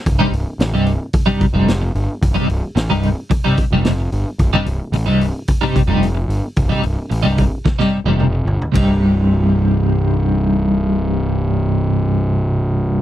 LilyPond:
<<
  \new Staff \with { instrumentName = "Clean electric guitar" } { \clef bass \time 4/4 \key c \minor \tempo 4 = 110 r16 <g, c g ees'>16 r8. <g, c g ees'>16 r8. <g, c g ees'>16 r16 <g, c g ees'>16 r4 | r16 <g, c g ees'>16 r8. <g, c g ees'>16 r8. <g, c g ees'>16 r16 <g, c g ees'>16 r4 | r16 <g, c g ees'>16 r8. <g, c g ees'>16 r8. <g, c g ees'>16 r16 <g, c g ees'>16 r4 | r16 <g, c g ees'>16 r8. <g, c g ees'>16 r8. <g, c g ees'>16 r16 <g, c g ees'>16 r4 |
<c, g, c g ees'>1~ | <c, g, c g ees'>1 | }
  \new Staff \with { instrumentName = "Picked electric bass" } { \clef bass \time 4/4 \key c \minor c,,16 r16 c,,16 r16 a,,16 c,,8 r4 f,,8. g,,16 r16 | c,,16 r16 c,,16 r16 a,,16 c,,8 r4 f,,8. g,,16 r16 | c,,16 r16 c,,16 r16 a,,16 c,,8 r4 f,,8. g,,16 r16 | c,,16 r16 c,,16 r16 a,,16 c,,8 r4 f,,8. g,,16 r16 |
c,,1~ | c,,1 | }
  \new DrumStaff \with { instrumentName = "Drums" } \drummode { \time 4/4 <hho bd>8 hho8 <hho sn>8 hho8 <hho bd>8 <hho bd>8 <hho sn>8 hho8 | <hho bd>8 hho8 <hho sn>8 hho8 <hho bd>8 <hho bd>8 <hho sn>8 hho8 | <hho bd>8 hho8 hho8 hho8 <hho bd>8 <hho bd>8 hho8 hho8 | <hho bd>8 hho8 hho8 <hho bd>8 <bd sn>16 sn8 tommh16 toml8 tomfh16 tomfh16 |
<bd cymr>4 r4 r4 r4 | r4 r4 r4 r4 | }
>>